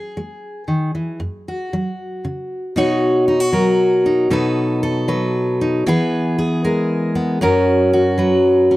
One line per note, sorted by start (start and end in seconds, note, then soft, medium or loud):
0.00 0.11 E3 medium
0.00 1.17 G#4 soft
0.17 0.63 G#3 soft
0.68 0.94 D#3 soft
0.95 1.20 E3 soft
1.20 1.67 F#2 medium
1.48 2.73 F#4 soft
1.73 2.19 F#3 soft
2.25 2.71 C#3 soft
2.76 4.27 B2 medium
2.76 3.27 D#4 medium
2.76 3.27 F#4 medium
2.76 3.53 C#5 medium
3.28 3.40 D#4 medium
3.40 4.30 F#4 medium
3.52 5.07 F#3 medium
3.52 4.27 A#4 medium
4.06 4.28 D#4 medium
4.30 5.82 B2 medium
4.30 5.59 D#4 medium
4.30 4.82 A4 medium
4.30 5.08 B4 medium
4.83 5.83 A4 medium
5.08 5.85 F#3 medium
5.08 5.82 B4 medium
5.61 5.83 D#4 medium
5.86 7.38 E3 medium
5.86 7.14 B3 medium
5.86 6.37 G#4 medium
5.86 6.64 B4 medium
6.38 7.38 G#4 medium
6.64 7.38 G#3 medium
6.64 7.38 A#4 medium
7.15 7.41 B3 medium
7.41 8.77 F#2 loud
7.41 8.70 C#4 medium
7.41 7.93 F#4 medium
7.41 8.18 A#4 medium
7.93 8.77 F#4 medium
8.18 8.77 F#3 medium
8.18 8.77 B4 medium
8.71 8.77 C#4 medium